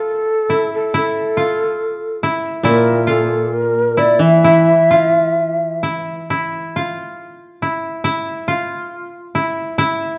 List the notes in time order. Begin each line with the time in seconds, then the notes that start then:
Already playing: F4 A4
0.50 E4
0.74 A4
0.94 E4 A4
1.37 F4
2.23 E4
2.63 A#2 E4 A#4
3.07 F4 A4
3.54 A#4
3.97 E4 D5
4.19 E3 E5
4.44 E4
4.91 F4
5.83 E4
6.30 E4
6.76 F4
7.62 E4
8.04 E4
8.48 F4
9.35 E4
9.78 E4